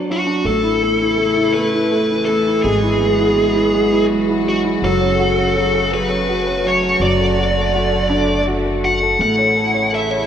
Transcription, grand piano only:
0.00 0.10 F#3 medium
0.00 0.27 D4 soft
0.10 0.45 F#3 soft
0.27 0.45 D4 soft
0.45 0.81 A3 medium
0.63 0.99 E4 soft
0.83 1.16 A3 soft
1.01 1.34 E4 soft
1.18 1.53 A3 soft
1.36 1.72 E4 soft
1.55 1.90 A3 medium
1.73 2.09 E4 soft
1.92 2.27 A3 soft
2.11 2.46 E4 soft
2.28 2.63 A3 medium
2.47 2.64 E4 soft
2.64 2.99 G#3 medium
2.83 3.17 E4 soft
3.01 3.35 G#3 soft
3.19 3.53 E4 soft
3.37 3.72 G#3 soft
3.55 3.90 E4 soft
3.73 4.09 G#3 medium
3.92 4.28 E4 soft
4.10 4.46 G#3 soft
4.29 4.63 E4 soft
4.47 4.82 G#3 soft
4.64 4.82 E4 medium
4.84 5.55 F#3 medium
5.01 5.36 C#4 soft
5.19 6.27 F#4 soft
5.38 5.73 C#4 soft
5.56 5.91 F#3 medium
5.75 6.08 C#4 soft
5.92 6.63 F#3 medium
6.10 6.45 C#4 soft
6.29 6.99 F#4 soft
6.47 6.82 C#4 soft
6.64 7.00 F#3 medium
6.83 7.01 C#4 soft
7.02 9.16 F#3 medium
7.21 7.56 A4 soft
7.38 7.73 F#4 soft
7.58 7.91 A4 soft
7.74 8.45 F#4 medium
7.93 8.27 A4 soft
8.10 9.16 D4 medium
8.28 8.64 A4 soft
8.47 8.82 F#4 soft
8.66 9.01 A4 soft
8.84 9.19 F#4 soft
9.03 9.19 A4 soft
9.20 10.27 A3 medium
9.38 9.72 C#5 soft
9.57 9.91 A4 soft
9.74 10.09 C#5 soft
9.92 10.27 A4 soft
10.11 10.27 C#5 soft

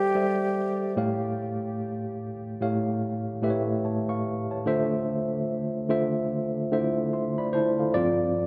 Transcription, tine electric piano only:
0.00 0.15 G3 medium
0.00 0.15 G4 medium
0.00 0.16 A4 medium
0.00 0.15 C5 medium
0.00 0.16 D5 medium
0.00 0.16 E5 medium
0.15 0.96 G3 medium
0.15 0.96 G4 medium
0.15 0.97 A4 medium
0.15 0.97 C5 medium
0.15 0.97 D5 medium
0.15 0.97 E5 medium
0.96 2.32 A2 medium
0.96 2.33 A3 medium
0.96 2.33 G4 medium
0.96 2.33 C#5 medium
0.96 2.33 F5 medium
2.61 3.31 A2 medium
2.61 3.31 A3 medium
2.61 3.31 G4 medium
2.61 3.31 C#5 medium
2.61 3.32 F5 medium
3.42 4.47 A2 medium
3.42 4.47 A3 medium
3.42 4.47 G4 medium
3.42 3.51 B4 medium
3.42 3.84 E5 medium
3.50 3.84 C#5 medium
3.85 4.08 C#5 soft
3.85 4.08 A5 soft
4.09 4.48 F5 medium
4.09 4.48 C#6 medium
4.51 4.90 C#5 soft
4.51 4.89 A5 medium
4.66 5.70 D3 medium
4.66 5.70 A3 medium
4.66 5.71 F4 medium
4.66 5.71 C5 loud
4.66 5.71 E5 loud
5.89 6.59 D3 medium
5.89 6.59 A3 medium
5.89 6.60 F4 medium
5.89 6.60 C5 medium
5.89 6.60 E5 medium
6.71 7.76 D3 medium
6.71 7.76 A3 medium
6.71 6.80 E4 medium
6.71 7.13 C5 medium
6.71 7.13 E5 medium
6.79 7.79 F4 medium
7.13 7.37 E5 soft
7.13 7.37 C6 soft
7.38 7.54 D5 medium
7.38 7.53 B5 medium
7.53 7.93 E4 medium
7.53 7.78 C5 medium
7.53 7.78 A5 medium
7.79 8.18 A4 soft
7.79 8.18 F5 soft
7.94 8.47 G2 medium
7.94 8.47 F3 medium
7.94 8.47 C4 medium
7.94 8.47 F4 medium
7.94 8.47 D5 loud

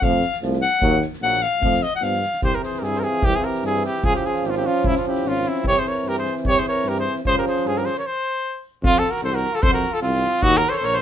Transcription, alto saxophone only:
0.04 0.37 F5 loud
0.62 1.00 F#5 loud
1.23 1.44 F#5 loud
1.42 1.84 F5 loud
1.83 1.95 D#5 loud
1.96 2.05 F#5 medium
2.03 2.43 F5 loud
2.43 2.54 G4 medium
2.54 2.63 G4 medium
2.64 2.83 G#4 medium
2.82 2.98 E4 medium
2.82 2.87 G4 medium
2.97 3.08 G4 medium
2.97 3.03 G#4 soft
3.06 3.27 F4 medium
3.26 3.39 E4 medium
3.38 3.49 F4 medium
3.47 3.65 G4 medium
3.66 3.83 E4 medium
3.87 4.08 E4 medium
4.06 4.16 F4 medium
4.19 4.29 E4 medium
4.28 4.48 F4 medium
4.47 4.49 E4 medium
4.51 4.56 C#4 medium
4.58 4.68 E4 medium
4.67 4.89 C#4 medium
4.89 4.97 C#4 medium
4.98 5.05 C#4 medium
5.08 5.28 E4 medium
5.27 5.49 C#4 medium
5.48 5.66 C4 medium
5.67 5.80 G4 medium
5.78 5.90 G#4 medium
5.88 6.09 A#4 medium
6.08 6.17 G4 medium
6.19 6.36 G#4 medium
6.48 6.61 G4 medium
6.60 6.67 G#4 medium
6.68 6.90 A#4 medium
6.88 6.97 G4 medium
6.99 7.16 G#4 medium
7.28 7.36 G#4 medium
7.38 7.45 G4 medium
7.48 7.69 G#4 medium
7.67 7.80 F4 medium
7.78 7.87 G4 medium
7.85 7.97 G#4 medium
7.98 8.04 A#4 medium
8.85 8.99 C4 medium
8.98 9.12 F4 medium
9.10 9.23 F#4 medium
9.24 9.34 A4 medium
9.33 9.54 F#4 medium
9.53 9.62 F4 medium
9.61 9.71 A4 loud
9.72 9.93 F#4 medium
9.92 10.01 F4 medium
10.01 10.44 C4 medium
10.43 10.59 D#4 loud
10.58 10.71 F#4 medium
10.70 10.74 A4 medium
10.70 10.78 A#4 medium
10.77 10.85 A4 medium
10.84 10.96 A#4 loud
10.94 11.02 A4 medium

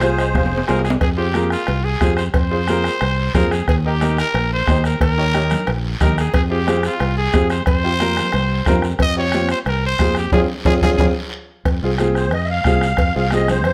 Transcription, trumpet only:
0.00 0.65 G#4 medium
0.68 0.84 A#4 medium
0.84 0.92 G#4 medium
1.02 1.09 G#4 medium
1.17 1.49 G4 medium
1.51 1.86 F4 medium
1.84 2.16 G#4 loud
2.16 2.24 C5 medium
2.34 3.30 C5 loud
3.35 3.53 A#4 loud
3.52 3.68 G#4 medium
3.68 3.76 G#4 medium
3.86 4.17 G4 medium
4.19 4.49 A#4 loud
4.53 4.83 C5 loud
4.85 5.00 A#4 medium
5.02 5.70 A#4 loud
6.02 6.17 A#4 medium
6.19 6.34 G#4 medium
6.35 6.42 G#4 loud
6.51 6.82 G4 medium
6.86 7.16 F4 loud
7.18 7.48 G#4 loud
7.51 7.66 C5 medium
7.66 8.79 C5 loud
9.02 9.17 D#5 loud
9.18 9.48 C#5 loud
9.51 9.59 C5 loud
9.68 9.83 A#4 loud
9.86 10.16 C5 loud
10.18 10.32 G4 medium
10.33 10.41 G#4 medium
10.66 10.74 G#4 loud
10.83 10.91 G#4 loud
10.97 11.06 G#4 medium

